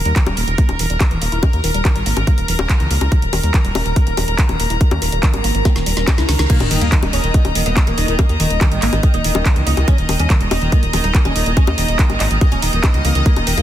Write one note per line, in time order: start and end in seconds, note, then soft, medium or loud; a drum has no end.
0.00 6.51 A#4 medium
0.00 13.62 A#5 medium
0.05 0.12 D#2 medium
0.05 0.11 G3 medium
0.05 closed hi-hat medium
0.16 0.25 D#3 loud
0.16 kick loud
0.16 clap loud
0.16 closed hi-hat medium
0.26 0.34 D#1 medium
0.26 0.35 G3 medium
0.26 closed hi-hat soft
0.26 high bongo medium
0.37 0.44 D#1 loud
0.37 0.46 A#3 medium
0.37 open hi-hat medium
0.48 0.55 D#1 medium
0.48 0.54 D#3 medium
0.48 closed hi-hat soft
0.58 0.67 A#3 medium
0.58 kick loud
0.58 closed hi-hat medium
0.69 0.76 D#1 medium
0.69 0.78 D#3 medium
0.69 closed hi-hat medium
0.69 high bongo soft
0.79 0.86 D#1 loud
0.79 0.85 E3 medium
0.79 open hi-hat loud
0.90 0.97 D#1 medium
0.90 0.96 G3 medium
0.90 closed hi-hat medium
1.00 1.06 D#3 medium
1.00 kick loud
1.00 clap loud
1.00 closed hi-hat medium
1.00 high bongo soft
1.11 1.18 D#1 medium
1.11 1.17 E3 medium
1.11 closed hi-hat medium
1.22 1.29 D#1 loud
1.22 1.31 A#3 medium
1.22 open hi-hat medium
1.32 1.39 D#1 medium
1.32 1.38 E4 medium
1.32 closed hi-hat soft
1.43 1.46 D#3 medium
1.43 kick loud
1.43 closed hi-hat medium
1.43 high bongo medium
1.53 1.60 D#2 medium
1.53 1.62 D#3 medium
1.53 closed hi-hat medium
1.64 1.71 D#1 loud
1.64 1.70 D#3 loud
1.64 open hi-hat loud
1.74 1.81 D#1 medium
1.74 1.80 G3 medium
1.74 closed hi-hat medium
1.85 1.94 D#3 loud
1.85 kick loud
1.85 clap loud
1.85 closed hi-hat medium
1.85 high bongo soft
1.96 2.03 G#1 medium
1.96 2.04 G3 medium
1.96 closed hi-hat medium
2.06 2.13 G#1 loud
2.06 2.15 A#3 medium
2.06 open hi-hat medium
2.17 2.24 G#1 medium
2.17 2.23 D#3 medium
2.17 closed hi-hat medium
2.17 high bongo soft
2.27 2.36 A#3 medium
2.27 kick loud
2.27 closed hi-hat medium
2.38 2.45 D#1 medium
2.38 2.47 D#3 medium
2.38 closed hi-hat medium
2.48 2.55 D#1 loud
2.48 2.54 E3 medium
2.48 open hi-hat loud
2.59 2.66 D#1 medium
2.59 2.65 G3 medium
2.59 closed hi-hat medium
2.59 high bongo medium
2.69 2.75 D#3 medium
2.69 kick loud
2.69 clap loud
2.69 closed hi-hat medium
2.80 2.87 C#2 medium
2.80 2.86 E3 medium
2.80 closed hi-hat soft
2.91 2.98 C#2 loud
2.91 3.00 A#3 medium
2.91 open hi-hat medium
3.01 3.08 C#2 medium
3.01 3.07 E4 medium
3.01 closed hi-hat medium
3.01 high bongo soft
3.12 3.15 D#3 medium
3.12 kick loud
3.12 closed hi-hat medium
3.12 riser medium
3.22 3.29 D#1 medium
3.22 3.31 D#3 medium
3.22 closed hi-hat medium
3.33 3.40 D#1 loud
3.33 3.39 D#3 loud
3.33 open hi-hat loud
3.33 high bongo soft
3.43 3.50 D#2 loud
3.43 3.49 G3 medium
3.43 closed hi-hat medium
3.54 3.63 D#3 loud
3.54 kick loud
3.54 clap loud
3.54 closed hi-hat medium
3.65 3.72 D#1 medium
3.65 3.73 G3 medium
3.65 closed hi-hat medium
3.75 3.82 D#1 medium
3.75 3.84 A#3 medium
3.75 open hi-hat medium
3.75 high bongo medium
3.86 3.93 D#1 medium
3.86 3.92 D#3 medium
3.86 closed hi-hat medium
3.96 4.05 A#3 medium
3.96 kick loud
3.96 closed hi-hat medium
4.07 4.14 D#1 medium
4.07 4.16 D#3 medium
4.07 closed hi-hat medium
4.17 4.24 D#1 loud
4.17 4.23 E3 medium
4.17 open hi-hat loud
4.17 high bongo soft
4.28 4.35 D#1 medium
4.28 4.34 G3 medium
4.28 closed hi-hat medium
4.38 4.44 D#3 medium
4.38 kick loud
4.38 clap loud
4.38 closed hi-hat medium
4.49 4.56 D#1 medium
4.49 4.55 E3 medium
4.49 closed hi-hat medium
4.49 high bongo soft
4.60 4.67 D#1 loud
4.60 4.69 A#3 medium
4.60 open hi-hat medium
4.70 4.77 D#1 medium
4.70 4.76 E4 medium
4.70 closed hi-hat medium
4.81 4.84 D#3 medium
4.81 kick loud
4.81 closed hi-hat medium
4.91 4.98 D#2 medium
4.91 5.00 D#3 medium
4.91 closed hi-hat medium
4.91 high bongo medium
5.02 5.09 D#1 loud
5.02 5.08 D#3 loud
5.02 open hi-hat loud
5.12 5.20 D#1 medium
5.12 5.18 G3 medium
5.12 closed hi-hat medium
5.23 5.32 D#3 loud
5.23 kick loud
5.23 clap loud
5.23 closed hi-hat medium
5.34 5.41 G#1 medium
5.34 5.43 G3 medium
5.34 closed hi-hat medium
5.34 high bongo soft
5.44 5.51 G#1 loud
5.44 5.53 A#3 medium
5.44 open hi-hat medium
5.55 5.62 G#1 medium
5.55 5.61 D#3 medium
5.55 closed hi-hat medium
5.65 5.74 A#3 medium
5.65 kick loud
5.65 snare medium
5.65 closed hi-hat medium
5.65 high bongo soft
5.76 5.83 D#1 medium
5.76 5.85 D#3 medium
5.76 snare medium
5.76 closed hi-hat medium
5.86 5.93 D#1 loud
5.86 5.92 G3 medium
5.86 open hi-hat loud
5.97 6.04 D#1 loud
5.97 6.03 G3 medium
5.97 snare medium
5.97 closed hi-hat medium
6.08 6.13 G3 medium
6.08 kick loud
6.08 snare medium
6.08 clap loud
6.08 closed hi-hat medium
6.08 high bongo medium
6.18 6.25 C#2 medium
6.18 6.24 E4 loud
6.18 snare medium
6.18 closed hi-hat medium
6.29 6.36 C#2 loud
6.29 6.32 D#3 medium
6.29 snare loud
6.29 open hi-hat medium
6.39 6.46 C#2 medium
6.39 6.43 D#3 medium
6.39 snare medium
6.39 closed hi-hat medium
6.50 6.53 D#3 medium
6.50 6.57 A#3 loud
6.50 13.62 A#3 medium
6.50 13.62 D#5 medium
6.50 kick loud
6.50 closed hi-hat medium
6.50 crash loud
6.50 sub drop medium
6.59 6.67 D#1 medium
6.59 6.68 D#3 medium
6.59 6.69 D#3 medium
6.59 13.62 D#4 medium
6.59 closed hi-hat medium
6.59 high bongo soft
6.70 6.78 D#1 loud
6.70 6.78 D#3 medium
6.70 6.77 D#3 loud
6.70 13.62 D#5 medium
6.70 open hi-hat loud
6.81 6.89 D#2 medium
6.81 6.87 G3 medium
6.81 6.89 A#3 medium
6.81 closed hi-hat medium
6.92 7.01 D#3 loud
6.92 6.99 D#3 medium
6.92 kick loud
6.92 clap loud
6.92 closed hi-hat medium
7.03 7.10 D#1 medium
7.03 7.10 D#3 medium
7.03 7.12 G3 medium
7.03 closed hi-hat medium
7.03 high bongo medium
7.13 7.20 D#1 loud
7.13 7.22 A#3 medium
7.13 7.20 C#4 loud
7.13 open hi-hat medium
7.24 7.31 D#1 medium
7.24 7.30 D#3 medium
7.24 7.31 D#3 medium
7.24 closed hi-hat medium
7.34 7.42 D#3 medium
7.34 7.43 A#3 medium
7.34 kick loud
7.34 closed hi-hat medium
7.45 7.52 D#1 medium
7.45 7.54 D#3 medium
7.45 closed hi-hat medium
7.45 high bongo soft
7.55 7.62 D#1 loud
7.55 7.63 D#3 medium
7.55 7.61 E3 medium
7.55 open hi-hat loud
7.66 7.73 D#1 medium
7.66 7.72 G3 medium
7.66 7.73 B3 medium
7.66 closed hi-hat medium
7.77 7.82 D#3 medium
7.77 7.84 D#3 medium
7.77 kick loud
7.77 clap loud
7.77 closed hi-hat medium
7.77 high bongo soft
7.87 7.94 D#1 medium
7.87 7.93 E3 medium
7.87 7.94 A#3 medium
7.87 closed hi-hat medium
7.98 8.05 D#1 loud
7.98 8.05 D#3 medium
7.98 8.07 A#3 medium
7.98 open hi-hat medium
8.08 8.15 D#1 medium
8.08 8.16 D#3 medium
8.08 8.14 E4 medium
8.08 closed hi-hat medium
8.19 8.22 D#3 medium
8.19 8.26 A#3 medium
8.19 kick loud
8.19 closed hi-hat medium
8.19 high bongo medium
8.29 8.36 D#2 medium
8.29 8.38 D#3 medium
8.29 8.37 D#3 medium
8.29 closed hi-hat medium
8.40 8.47 D#1 loud
8.40 8.47 D#3 medium
8.40 8.46 D#3 loud
8.40 open hi-hat loud
8.50 8.58 D#1 loud
8.50 8.56 G3 medium
8.50 closed hi-hat medium
8.61 8.68 D#3 medium
8.61 8.70 D#3 loud
8.61 kick loud
8.61 clap loud
8.61 closed hi-hat medium
8.61 high bongo soft
8.72 8.79 G#1 medium
8.72 8.79 D#3 medium
8.72 8.81 G3 medium
8.72 closed hi-hat medium
8.82 8.89 G#1 medium
8.82 8.89 A#3 medium
8.82 8.91 A#3 medium
8.82 clap medium
8.82 open hi-hat loud
8.93 9.00 G#1 medium
8.93 8.99 D#3 medium
8.93 9.00 D#3 medium
8.93 closed hi-hat medium
8.93 high bongo soft
9.03 9.11 D#3 medium
9.03 9.12 A#3 medium
9.03 kick loud
9.03 closed hi-hat medium
9.14 9.21 D#1 medium
9.14 9.23 D#3 medium
9.14 9.21 D#4 medium
9.14 closed hi-hat medium
9.24 9.31 D#1 loud
9.24 9.32 D#3 medium
9.24 9.30 E3 medium
9.24 open hi-hat loud
9.35 9.42 D#1 medium
9.35 9.42 D#3 medium
9.35 9.41 G3 medium
9.35 closed hi-hat medium
9.35 high bongo medium
9.46 9.52 D#3 medium
9.46 9.53 D#4 medium
9.46 kick loud
9.46 clap loud
9.46 closed hi-hat medium
9.56 9.63 C#2 medium
9.56 9.63 D#3 medium
9.56 9.62 E3 medium
9.56 closed hi-hat medium
9.67 9.74 C#2 loud
9.67 9.76 A#3 medium
9.67 9.74 D#4 medium
9.67 open hi-hat loud
9.77 9.84 C#2 medium
9.77 9.85 D#3 medium
9.77 9.83 E4 medium
9.77 closed hi-hat medium
9.77 high bongo soft
9.88 9.91 D#3 medium
9.88 9.95 C#4 loud
9.88 kick loud
9.88 closed hi-hat medium
9.98 10.05 D#1 medium
9.98 10.07 D#3 medium
9.98 10.06 D#3 medium
9.98 closed hi-hat medium
10.09 10.16 D#1 loud
10.09 10.15 D#3 loud
10.09 10.16 D#3 medium
10.09 open hi-hat loud
10.09 high bongo soft
10.19 10.27 D#2 medium
10.19 10.25 G3 medium
10.19 10.27 C#4 medium
10.19 closed hi-hat medium
10.30 10.39 D#3 loud
10.30 10.37 D#3 medium
10.30 kick loud
10.30 clap loud
10.30 closed hi-hat medium
10.41 10.48 D#1 medium
10.41 10.48 D#3 medium
10.41 10.50 G3 medium
10.41 closed hi-hat medium
10.51 10.58 D#1 loud
10.51 10.60 A#3 medium
10.51 10.58 D#4 medium
10.51 open hi-hat loud
10.51 high bongo medium
10.62 10.69 D#1 medium
10.62 10.68 D#3 medium
10.62 10.69 D#3 medium
10.62 closed hi-hat soft
10.72 10.80 D#3 medium
10.72 10.81 A#3 medium
10.72 kick loud
10.72 closed hi-hat medium
10.83 10.90 D#1 medium
10.83 10.92 D#3 medium
10.83 closed hi-hat medium
10.93 11.00 D#1 loud
10.93 11.01 D#3 medium
10.93 10.99 E3 medium
10.93 open hi-hat loud
10.93 high bongo soft
11.04 11.11 D#1 loud
11.04 11.10 G3 medium
11.04 11.11 D#4 medium
11.04 closed hi-hat medium
11.15 11.22 D#3 medium
11.15 11.21 D#3 medium
11.15 kick loud
11.15 clap loud
11.15 closed hi-hat medium
11.25 11.32 D#1 medium
11.25 11.31 E3 medium
11.25 11.32 C#4 loud
11.25 closed hi-hat soft
11.25 high bongo soft
11.36 11.43 D#1 loud
11.36 11.43 D#3 medium
11.36 11.45 A#3 medium
11.36 open hi-hat medium
11.46 11.53 D#1 medium
11.46 11.54 D#3 medium
11.46 11.52 E4 medium
11.46 closed hi-hat medium
11.57 11.60 D#3 medium
11.57 11.64 C#4 medium
11.57 kick loud
11.57 closed hi-hat medium
11.67 11.74 D#2 medium
11.67 11.75 D#3 medium
11.67 11.76 D#3 medium
11.67 closed hi-hat medium
11.67 high bongo medium
11.78 11.85 D#1 loud
11.78 11.84 D#3 loud
11.78 11.85 D#3 medium
11.78 open hi-hat loud
11.88 11.96 D#1 medium
11.88 11.94 G3 medium
11.88 closed hi-hat medium
11.99 12.06 D#3 medium
11.99 12.08 D#3 loud
11.99 kick loud
11.99 clap loud
11.99 closed hi-hat medium
12.10 12.17 G#1 medium
12.10 12.17 D#3 medium
12.10 12.19 G3 medium
12.10 closed hi-hat soft
12.10 high bongo soft
12.20 12.27 G#1 medium
12.20 12.29 A#3 medium
12.20 12.28 D#4 medium
12.20 clap medium
12.20 open hi-hat medium
12.31 12.38 G#1 medium
12.31 12.38 D#3 medium
12.31 12.37 D#3 medium
12.31 closed hi-hat soft
12.41 12.49 D#3 medium
12.41 12.50 A#3 medium
12.41 kick loud
12.41 closed hi-hat medium
12.41 high bongo soft
12.52 12.59 D#1 medium
12.52 12.61 D#3 medium
12.52 12.59 C#4 medium
12.52 closed hi-hat medium
12.62 12.70 D#1 loud
12.62 12.70 D#3 medium
12.62 12.68 D#4 loud
12.62 open hi-hat loud
12.73 12.80 D#1 medium
12.73 12.80 D#3 medium
12.73 12.79 E3 medium
12.73 closed hi-hat medium
12.84 12.91 B3 medium
12.84 12.87 D#4 loud
12.84 kick loud
12.84 clap loud
12.84 closed hi-hat medium
12.84 high bongo medium
12.94 13.01 C#2 medium
12.94 13.01 D#3 medium
12.94 13.00 G3 medium
12.94 closed hi-hat medium
13.05 13.12 C#2 loud
13.05 13.11 E3 medium
13.05 13.12 A#3 medium
13.05 open hi-hat loud
13.15 13.22 C#2 medium
13.15 13.23 D#3 medium
13.15 13.24 E3 medium
13.15 closed hi-hat medium
13.26 13.29 D#3 medium
13.26 13.33 A#3 loud
13.26 kick loud
13.26 closed hi-hat medium
13.36 13.43 D#1 medium
13.36 13.44 D#3 medium
13.36 13.45 D#3 medium
13.36 closed hi-hat soft
13.36 high bongo soft
13.47 13.54 D#1 loud
13.47 13.54 D#3 medium
13.47 13.53 D#3 loud
13.47 open hi-hat loud
13.58 13.62 D#2 medium
13.58 13.62 G3 medium
13.58 13.62 A#3 medium
13.58 closed hi-hat medium